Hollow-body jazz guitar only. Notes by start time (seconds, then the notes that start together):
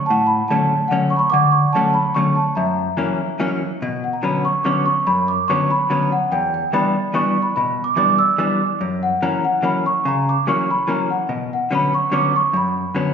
0.10 A2
0.50 D3 F#3 A3 C#4
0.91 D3 F#3 A3 C#4
1.34 D3
1.75 D3 F#3 A3 C#4
2.16 D3 F#3 A3 C#4
2.57 F#2
2.97 E3 F#3 A#3 C#4
3.40 E3 F#3 A#3 C#4
3.82 B2
4.23 D3 F#3 B3 C#4
4.65 D3 F#3 B3 C#4
5.07 F#2
5.50 D3 F#3 B3 C#4
5.90 D3 F#3 B3 C#4
6.32 E2
6.73 E3 G3 B3 D4
7.14 E3 G3 B3 D4
7.57 B2
7.96 E3 G3 B3 D4
8.38 E3 G3 B3 D4
8.81 F#2
9.22 E3 F#3 A#3 C#4
9.62 E3 F#3 A#3 C#4
10.05 C#3
10.47 E3 F#3 A#3 C#4
10.87 E3 F#3 A#3 C#4
11.29 B2
11.71 D3 F#3 B3 C#4
12.12 D3 F#3 B3 C#4
12.53 F#2
12.95 D3 F#3 B3 C#4